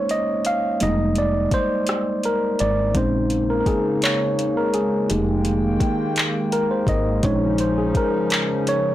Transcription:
Already playing: tine electric piano G#3 A#3 C#4 D#4 C5 C#5
0.09 tine electric piano D#5, closed hi-hat
0.45 tine electric piano F5, closed hi-hat
0.80 fretless electric bass F1, tine electric piano G3 G#3 A#3 D#4 D#5, closed hi-hat
1.15 tine electric piano D5, closed hi-hat
1.51 tine electric piano C5, muted fretless electric bass stroke, kick, closed hi-hat
1.87 cross-stick, closed hi-hat
2.23 tine electric piano A#4, closed hi-hat
2.59 fretless electric bass G#1, tine electric piano D5, closed hi-hat
2.94 fretless electric bass A#1, analog synth pad C#3 G#3 A#3 D#4, tine electric piano G#3 C4 C#4 D#4 C5, kick, closed hi-hat
3.30 closed hi-hat
3.50 tine electric piano A#4
3.60 tine electric piano A#4
3.66 tine electric piano G#4, muted fretless electric bass stroke, kick, closed hi-hat
4.02 tine electric piano C#5, clap, closed hi-hat
4.39 closed hi-hat
4.57 tine electric piano A#4
4.74 tine electric piano G#4, closed hi-hat
5.09 fretless electric bass F1, analog synth pad D#3 A#3 G5, tine electric piano G#3 A#3 D#4 G4, closed hi-hat
5.45 closed hi-hat
5.80 muted fretless electric bass stroke, kick, closed hi-hat
6.16 clap, closed hi-hat
6.52 tine electric piano A#4, closed hi-hat
6.71 tine electric piano C5
6.87 fretless electric bass G#1, tine electric piano D#5, kick, closed hi-hat
7.23 fretless electric bass A#1, analog synth pad C#3 F3 C#4 D#4, tine electric piano G#3 C#4 D#4 C5 C#5, kick, closed hi-hat
7.58 tine electric piano C5, closed hi-hat
7.78 tine electric piano G#4
7.95 tine electric piano A#4, muted fretless electric bass stroke, kick, closed hi-hat
8.30 clap, closed hi-hat
8.67 tine electric piano C#5, closed hi-hat

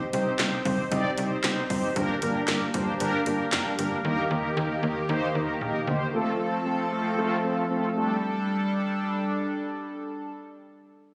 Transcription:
0.13 fm bass C2, analog polysynth C4 D#4 G4 C5, closed hi-hat
0.39 fm bass C2, analog polysynth C4 D#4 G4 C5, snare, clap, closed hi-hat
0.65 fm bass C2, analog polysynth C4 D#4 G4 C5, kick, open hi-hat
0.92 fm bass C2, analog polysynth C4 D#4 G4 D5, kick, closed hi-hat
1.18 fm bass C2, analog polysynth C4 D#4 G4 C5, closed hi-hat
1.44 fm bass C2, analog polysynth C4 D#4 G4 C5, snare, clap, closed hi-hat
1.70 fm bass G1, analog polysynth C4 D#4 G4 C5, kick, open hi-hat
1.96 fm bass G1, analog synth pad G3 D4 A#4, analog polysynth A#3 D4 G4 A#4, kick, closed hi-hat
2.22 fm bass G1, analog polysynth A#3 D4 G4 A#4, closed hi-hat
2.48 fm bass G1, analog polysynth A#3 D4 G4 A#4, snare, clap, closed hi-hat
2.74 fm bass G1, analog polysynth A#3 D4 G4 C5, kick, closed hi-hat
3.00 fm bass G1, analog polysynth A#3 D4 G4 A#4, closed hi-hat
3.26 fm bass G1, analog polysynth A#3 D4 G4 A#4, closed hi-hat
3.52 fm bass F1, analog polysynth A#3 D4 G4 A#4, snare, clap, closed hi-hat
3.79 fm bass G1, analog polysynth A#3 D4 G4 A#4, closed hi-hat
4.05 fm bass D#2, analog synth pad D#3 A#3 G4, analog polysynth A#3 D#4 G4 A#4
4.31 fm bass D#2, analog polysynth A#3 D#4 G4 A#4
4.57 fm bass D#2, analog polysynth A#3 D#4 G4 A#4
4.83 fm bass D#2, analog polysynth A#3 D#4 G4 A#4
5.09 fm bass D#2, analog polysynth A#3 D#4 G4 C5
5.35 fm bass D#2, analog polysynth A#3 D#4 G4 A#4
5.61 fm bass A#1, analog polysynth A#3 D#4 G4 A#4
5.87 fm bass D2, analog polysynth A#3 D#4 G4 C5
6.13 analog synth pad F3 C4 A4, analog polysynth A3 C4 F4 A4
6.40 analog polysynth A3 C4 F4 A4
6.66 analog polysynth A3 C4 F4 A4
6.92 analog polysynth A3 C4 F4 A4
7.18 analog polysynth A3 C4 F4 A4
7.44 analog polysynth A3 C4 F4 A4
7.70 analog polysynth A3 C4 F4 A4
7.96 analog synth pad G3 D4 A4, analog polysynth A3 D4 G4 A4

